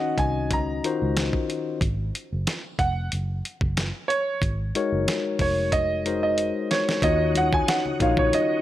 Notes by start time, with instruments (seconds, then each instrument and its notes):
Already playing: tine electric piano D#3 C#4 D#4 F#4 D#5, grand piano F#5
0.18 fingered electric bass C2, grand piano G#5, kick, closed hi-hat
0.51 fingered electric bass C#2, grand piano A#5, kick, closed hi-hat
0.84 tine electric piano D#3 D#4 F4 F#4 C5, closed hi-hat
1.02 fingered electric bass C#2
1.17 snare, closed hi-hat
1.33 kick
1.50 closed hi-hat
1.81 fingered electric bass G#1, kick, closed hi-hat
2.15 closed hi-hat
2.33 fingered electric bass F#1
2.47 snare, closed hi-hat
2.79 fingered electric bass F1, grand piano F#5, kick, closed hi-hat
3.12 fingered electric bass F#1, closed hi-hat
3.45 closed hi-hat
3.61 fingered electric bass F#1, kick
3.77 snare, closed hi-hat
4.08 grand piano C#5, closed hi-hat
4.42 fingered electric bass G#1, kick, closed hi-hat
4.75 tine electric piano G#3 D#4 F#4 A#4 C#5, closed hi-hat
4.92 fingered electric bass F#1
5.08 snare, closed hi-hat
5.39 fingered electric bass F1, grand piano C#5, kick, open hi-hat
5.72 grand piano D#5, kick, closed hi-hat
6.05 tine electric piano G#3 D#4 F#4 A#4 C5, closed hi-hat
6.23 grand piano D#5
6.38 closed hi-hat
6.71 grand piano C#5, snare, closed hi-hat
6.89 snare
7.02 fingered electric bass D#2, tonewheel organ D#3 C#4 D#4 F#4, tine electric piano D#3 D#4 F4 F#4 C#5, grand piano D#5, kick, closed hi-hat, muted conga
7.35 grand piano F#5, closed hi-hat, high conga
7.53 grand piano G#5, kick
7.68 grand piano F#5, snare, closed hi-hat, muted conga
7.86 low conga
8.00 fingered electric bass A#1, tine electric piano D#3 D#4 F4 F#4 C#5, grand piano F5, kick, closed hi-hat, muted conga
8.17 grand piano C#5, kick, low conga
8.33 grand piano D#5, closed hi-hat, muted conga, high conga